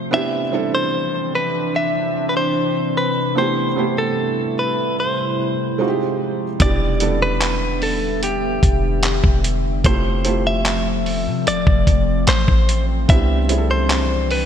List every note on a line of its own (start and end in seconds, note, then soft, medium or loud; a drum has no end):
0.00 6.56 C3 medium
0.11 3.33 E3 medium
0.11 0.41 B3 medium
0.11 0.41 C4 medium
0.11 3.33 C4 medium
0.11 3.33 D4 medium
0.11 0.42 D4 medium
0.11 0.42 E4 medium
0.11 0.42 G4 medium
0.11 0.74 E5 loud
0.51 1.71 G3 medium
0.51 1.71 C4 medium
0.51 1.72 D4 medium
0.51 1.72 E4 medium
0.51 1.72 A4 medium
0.75 1.35 C5 loud
1.35 1.76 B4 medium
1.76 2.25 E5 loud
2.29 2.35 B4 medium
2.37 2.97 C5 medium
2.97 3.34 B4 medium
3.35 5.77 G3 medium
3.35 3.65 A3 medium
3.35 5.77 A3 medium
3.35 3.66 B3 medium
3.35 3.66 C4 medium
3.35 5.77 E4 medium
3.35 3.66 E4 medium
3.35 3.67 G4 medium
3.35 4.00 C5 medium
3.76 4.95 A3 medium
3.76 4.96 B3 medium
3.76 4.96 C4 medium
3.76 4.96 E4 medium
3.76 4.97 G4 medium
3.98 4.60 A4 medium
4.59 4.96 B4 medium
5.00 6.17 C5 medium
5.78 6.59 F3 medium
5.78 6.44 G#3 medium
5.78 6.59 G#3 medium
5.78 6.44 C4 medium
5.78 6.59 D#4 medium
5.78 6.44 D#4 medium
5.78 6.45 F4 medium
5.78 5.87 F#4 medium
5.88 6.48 G4 medium
6.59 8.59 E1 loud
6.59 9.81 D3 medium
6.59 6.89 G3 medium
6.59 9.81 G3 medium
6.59 9.81 B3 medium
6.59 6.90 B3 medium
6.59 6.90 D4 medium
6.59 6.91 E4 medium
6.59 6.91 G4 medium
6.59 7.22 D5 loud
6.59 13.05 E5 medium
6.59 kick loud
6.59 closed hi-hat medium
7.00 8.20 G3 medium
7.00 8.20 B3 medium
7.00 8.20 D4 medium
7.00 8.21 E4 medium
7.00 8.21 A4 medium
7.00 closed hi-hat medium
7.22 7.84 B4 loud
7.42 clap loud
7.42 closed hi-hat medium
7.82 8.23 A4 medium
7.82 open hi-hat soft
8.23 9.41 G4 medium
8.23 closed hi-hat medium
8.63 9.21 E1 loud
8.63 kick medium
8.63 closed hi-hat medium
9.03 clap loud
9.03 closed hi-hat medium
9.24 9.66 E1 loud
9.24 kick loud
9.44 closed hi-hat medium
9.64 9.83 F1 loud
9.84 11.28 F1 loud
9.84 13.06 F3 medium
9.84 10.14 A3 medium
9.84 13.06 A3 medium
9.84 10.14 C4 medium
9.84 14.46 C4 medium
9.84 10.15 E4 medium
9.84 10.15 F4 medium
9.84 10.15 G4 medium
9.84 10.42 C5 loud
9.84 kick loud
9.84 closed hi-hat medium
10.24 11.44 A3 medium
10.24 11.44 C4 medium
10.24 11.45 E4 medium
10.24 11.45 F4 medium
10.24 11.45 G4 medium
10.24 closed hi-hat medium
10.47 11.47 E5 loud
10.66 clap loud
10.66 closed hi-hat medium
11.06 open hi-hat soft
11.27 11.48 C3 loud
11.47 11.66 F1 loud
11.47 12.24 D5 loud
11.47 closed hi-hat medium
11.67 11.86 F1 loud
11.67 kick loud
11.87 12.26 F1 loud
11.87 kick medium
11.87 closed hi-hat medium
12.27 12.47 A1 loud
12.27 12.85 C5 loud
12.27 clap loud
12.27 closed hi-hat medium
12.48 13.06 A1 loud
12.48 kick medium
12.69 closed hi-hat medium
13.08 14.46 C2 loud
13.08 14.46 E3 medium
13.08 14.46 G3 medium
13.08 13.38 B3 medium
13.08 13.39 C4 medium
13.08 14.46 D4 medium
13.08 13.39 D4 medium
13.08 13.39 E4 medium
13.08 13.40 G4 medium
13.08 13.70 E5 loud
13.08 kick loud
13.08 closed hi-hat medium
13.48 14.46 G3 medium
13.48 14.46 C4 medium
13.48 14.46 D4 medium
13.48 14.46 E4 medium
13.48 13.57 G#4 medium
13.48 closed hi-hat medium
13.58 14.46 A4 medium
13.71 14.33 C5 loud
13.90 clap loud
13.90 closed hi-hat medium
14.31 14.46 B4 medium
14.31 open hi-hat soft